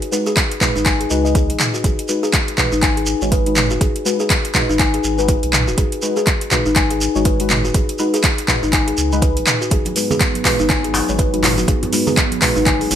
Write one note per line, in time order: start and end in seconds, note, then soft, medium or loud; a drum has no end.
0.02 closed hi-hat soft
0.12 0.30 G#3 medium
0.12 0.30 D#4 medium
0.12 0.29 F#4 medium
0.12 0.30 B4 medium
0.12 shekere medium
0.27 0.36 G#4 loud
0.27 shekere soft
0.37 kick loud
0.37 clap medium
0.37 closed hi-hat medium
0.37 shekere soft
0.51 closed hi-hat soft
0.61 1.08 G#3 loud
0.61 1.08 D#4 medium
0.61 1.08 F#4 medium
0.61 1.08 B4 loud
0.61 0.75 B4 loud
0.61 kick medium
0.61 clap medium
0.61 mid tom medium
0.61 shekere loud
0.76 1.06 G#1 medium
0.76 0.85 D#4 loud
0.76 shekere medium
0.86 0.99 G#5 loud
0.86 kick loud
0.86 clap medium
0.86 closed hi-hat medium
0.86 shekere soft
1.00 1.06 G#4 medium
1.00 closed hi-hat soft
1.10 1.51 C#2 medium
1.10 2.06 G#3 loud
1.10 2.06 D#4 medium
1.10 2.06 F#4 medium
1.10 2.06 B4 loud
1.10 shekere medium
1.25 1.30 D#5 medium
1.25 shekere soft
1.35 1.49 G#4 medium
1.35 kick loud
1.35 closed hi-hat medium
1.35 shekere soft
1.50 1.57 G#1 loud
1.50 closed hi-hat soft
1.60 clap loud
1.60 mid tom medium
1.60 shekere medium
1.74 1.80 F#4 medium
1.74 shekere soft
1.84 1.94 G#1 loud
1.84 1.97 G#4 medium
1.84 kick loud
1.84 closed hi-hat medium
1.84 shekere soft
1.99 closed hi-hat soft
2.08 2.56 G#3 medium
2.08 2.56 D#4 medium
2.08 2.56 F#4 medium
2.08 2.56 B4 medium
2.08 shekere medium
2.23 2.32 G#4 loud
2.23 shekere soft
2.33 kick loud
2.33 clap medium
2.33 closed hi-hat medium
2.33 shekere soft
2.48 closed hi-hat soft
2.58 2.76 G#3 medium
2.58 2.76 D#4 medium
2.58 2.76 F#4 medium
2.58 2.72 B4 loud
2.58 2.76 B4 medium
2.58 kick medium
2.58 clap medium
2.58 mid tom medium
2.58 shekere medium
2.72 3.15 G#1 medium
2.72 2.82 D#4 loud
2.72 shekere medium
2.82 2.96 G#5 loud
2.82 kick loud
2.82 clap medium
2.82 closed hi-hat medium
2.82 shekere soft
2.97 3.02 G#4 medium
2.97 closed hi-hat soft
3.06 shekere medium
3.21 3.72 G#1 medium
3.21 3.43 G#3 medium
3.21 3.43 D#4 medium
3.21 3.43 F#4 medium
3.21 3.43 C#5 medium
3.21 shekere medium
3.32 3.45 B4 loud
3.32 kick loud
3.32 closed hi-hat medium
3.32 shekere soft
3.46 3.61 G#3 medium
3.46 3.61 D#4 medium
3.46 3.61 F#4 medium
3.46 3.61 B4 medium
3.46 closed hi-hat soft
3.56 clap medium
3.56 mid tom medium
3.56 shekere medium
3.70 3.78 F#1 medium
3.70 3.81 F#4 medium
3.70 shekere soft
3.81 3.91 G#1 loud
3.81 3.94 G#4 medium
3.81 kick loud
3.81 closed hi-hat medium
3.81 shekere soft
3.96 closed hi-hat soft
4.05 4.23 G#3 medium
4.05 4.23 D#4 medium
4.05 4.23 F#4 medium
4.05 4.23 B4 medium
4.05 shekere medium
4.20 4.29 G#4 loud
4.20 shekere medium
4.30 kick loud
4.30 clap medium
4.30 closed hi-hat medium
4.30 shekere soft
4.45 closed hi-hat soft
4.54 5.15 G#3 loud
4.54 5.15 D#4 medium
4.54 5.15 F#4 medium
4.54 4.69 B4 loud
4.54 5.15 B4 loud
4.54 kick medium
4.54 clap medium
4.54 mid tom medium
4.54 shekere medium
4.69 4.99 G#1 medium
4.69 4.79 D#4 medium
4.69 shekere soft
4.79 4.93 G#5 loud
4.79 kick loud
4.79 clap medium
4.79 closed hi-hat medium
4.79 shekere soft
4.94 4.99 G#4 medium
4.94 closed hi-hat soft
5.04 5.36 G#1 medium
5.04 shekere medium
5.18 5.26 G#3 loud
5.18 5.26 D#4 medium
5.18 5.26 F#4 medium
5.18 5.27 B4 loud
5.18 shekere soft
5.28 5.42 B4 loud
5.28 kick loud
5.28 closed hi-hat medium
5.28 shekere soft
5.43 5.69 B1 medium
5.43 closed hi-hat soft
5.53 clap medium
5.53 mid tom medium
5.53 shekere medium
5.68 5.75 D#1 medium
5.68 5.77 F#4 medium
5.68 shekere soft
5.78 5.88 G#1 loud
5.78 5.91 G#4 medium
5.78 kick loud
5.78 closed hi-hat medium
5.78 shekere soft
5.92 closed hi-hat soft
6.02 6.49 G#3 medium
6.02 6.49 D#4 medium
6.02 6.49 F#4 medium
6.02 6.49 B4 medium
6.02 shekere medium
6.17 6.26 G#4 loud
6.17 shekere soft
6.27 kick loud
6.27 clap medium
6.27 closed hi-hat medium
6.27 shekere soft
6.41 closed hi-hat soft
6.51 6.69 G#3 medium
6.51 6.69 D#4 medium
6.51 6.69 F#4 medium
6.51 6.65 B4 loud
6.51 6.69 B4 medium
6.51 kick medium
6.51 clap medium
6.51 mid tom medium
6.51 shekere medium
6.66 7.08 G#1 medium
6.66 6.76 D#4 loud
6.66 shekere soft
6.76 6.89 G#5 loud
6.76 kick loud
6.76 clap medium
6.76 closed hi-hat medium
6.76 shekere soft
6.91 6.96 G#4 medium
6.91 closed hi-hat soft
7.01 shekere medium
7.15 7.66 G#1 medium
7.15 7.36 G#3 medium
7.15 7.36 D#4 medium
7.15 7.36 F#4 medium
7.15 7.36 C#5 medium
7.15 shekere soft
7.25 7.38 B4 loud
7.25 kick loud
7.25 closed hi-hat medium
7.25 shekere soft
7.40 7.54 G#3 medium
7.40 7.54 D#4 medium
7.40 7.54 F#4 medium
7.40 7.54 B4 medium
7.40 closed hi-hat soft
7.50 clap medium
7.50 mid tom medium
7.50 shekere medium
7.65 7.71 F#1 medium
7.65 7.74 F#4 medium
7.65 shekere soft
7.74 7.85 G#1 loud
7.74 7.88 G#4 medium
7.74 kick loud
7.74 closed hi-hat medium
7.74 shekere soft
7.89 closed hi-hat soft
7.98 8.17 G#3 medium
7.98 8.17 D#4 medium
7.98 8.17 F#4 medium
7.98 8.17 B4 medium
7.98 shekere medium
8.14 8.23 G#4 loud
8.14 closed hi-hat soft
8.14 shekere soft
8.23 kick loud
8.23 clap medium
8.23 closed hi-hat medium
8.23 shekere soft
8.38 closed hi-hat soft
8.48 9.09 G#3 loud
8.48 9.09 D#4 medium
8.48 9.09 F#4 medium
8.48 8.62 B4 medium
8.48 9.09 B4 loud
8.48 kick medium
8.48 clap medium
8.48 mid tom medium
8.48 shekere medium
8.63 8.93 G#1 medium
8.63 8.72 D#4 loud
8.63 shekere soft
8.73 8.86 G#5 loud
8.73 kick loud
8.73 clap medium
8.73 closed hi-hat medium
8.73 shekere soft
8.87 8.93 G#4 medium
8.87 closed hi-hat soft
8.98 9.38 C#2 medium
8.98 shekere medium
9.12 9.20 G#3 loud
9.12 9.20 D#4 medium
9.12 9.20 F#4 medium
9.12 9.20 B4 loud
9.12 shekere soft
9.22 9.35 B4 loud
9.22 kick loud
9.22 closed hi-hat medium
9.22 shekere soft
9.37 9.44 G#1 loud
9.37 closed hi-hat soft
9.46 clap medium
9.46 mid tom medium
9.46 shekere medium
9.61 9.71 F#4 medium
9.61 shekere soft
9.71 9.81 G#1 loud
9.71 12.95 G#2 medium
9.71 12.95 F#3 medium
9.71 12.95 B3 medium
9.71 9.84 G#4 medium
9.71 kick loud
9.71 closed hi-hat medium
9.71 shekere soft
9.85 closed hi-hat soft
9.85 muted conga medium
9.85 high conga loud
9.96 10.43 G#3 medium
9.96 10.43 D#4 medium
9.96 10.43 F#4 medium
9.96 10.43 B4 medium
9.96 open hi-hat medium
9.96 shekere medium
10.11 10.20 G#4 loud
10.11 low conga loud
10.11 shekere soft
10.21 kick loud
10.21 clap medium
10.21 closed hi-hat medium
10.21 muted conga soft
10.21 shekere soft
10.34 closed hi-hat soft
10.34 high conga medium
10.45 10.63 G#3 medium
10.45 10.63 D#4 medium
10.45 10.63 F#4 medium
10.45 10.63 B4 medium
10.45 10.59 B4 loud
10.45 kick medium
10.45 clap medium
10.45 mid tom medium
10.45 open hi-hat medium
10.45 djembe slap medium
10.45 shekere loud
10.59 11.02 G#1 medium
10.59 10.69 D#4 loud
10.59 muted conga soft
10.59 shekere soft
10.69 10.83 G#5 loud
10.69 kick loud
10.69 clap medium
10.69 closed hi-hat medium
10.69 djembe tone medium
10.69 low conga medium
10.69 shekere soft
10.84 10.90 G#4 medium
10.84 closed hi-hat soft
10.94 open hi-hat medium
10.94 djembe slap loud
10.94 muted conga soft
10.94 djembe tone medium
10.94 shekere medium
11.09 11.59 G#1 medium
11.09 11.30 G#3 medium
11.09 11.30 D#4 medium
11.09 11.30 F#4 medium
11.09 11.30 C#5 medium
11.09 shekere medium
11.19 11.32 B4 loud
11.19 kick loud
11.19 closed hi-hat medium
11.19 shekere soft
11.33 11.47 G#3 medium
11.33 11.47 D#4 medium
11.33 11.47 F#4 medium
11.33 11.47 B4 medium
11.33 closed hi-hat soft
11.43 clap medium
11.43 mid tom medium
11.43 open hi-hat medium
11.43 muted conga soft
11.43 djembe slap loud
11.43 djembe bass medium
11.43 low conga medium
11.43 shekere medium
11.58 11.65 F#1 medium
11.58 11.67 F#4 medium
11.58 high conga loud
11.58 shekere medium
11.68 11.78 G#1 loud
11.68 11.81 G#4 medium
11.68 kick loud
11.68 closed hi-hat medium
11.68 djembe tone medium
11.68 shekere soft
11.83 closed hi-hat soft
11.83 muted conga soft
11.83 high conga loud
11.83 djembe bass medium
11.92 12.10 G#3 medium
11.92 12.10 D#4 medium
11.92 12.10 F#4 medium
11.92 12.10 B4 medium
11.92 open hi-hat loud
11.92 shekere medium
12.07 12.16 G#4 loud
12.07 low conga medium
12.07 shekere medium
12.17 kick loud
12.17 clap medium
12.17 closed hi-hat medium
12.17 shekere soft
12.31 closed hi-hat soft
12.31 high conga medium
12.42 12.95 G#3 loud
12.42 12.95 D#4 medium
12.42 12.95 F#4 medium
12.42 12.56 B4 loud
12.42 12.95 B4 loud
12.42 kick medium
12.42 clap medium
12.42 mid tom medium
12.42 open hi-hat medium
12.42 djembe slap medium
12.42 shekere medium
12.56 12.86 G#1 medium
12.56 12.66 D#4 loud
12.56 muted conga soft
12.56 shekere soft
12.66 12.79 G#5 loud
12.66 kick loud
12.66 clap medium
12.66 closed hi-hat medium
12.66 djembe tone medium
12.66 low conga loud
12.66 shekere soft
12.81 12.86 G#4 medium
12.81 open hi-hat medium
12.91 12.95 G#1 medium
12.91 open hi-hat medium
12.91 muted conga soft
12.91 high conga medium
12.91 djembe tone medium
12.91 shekere medium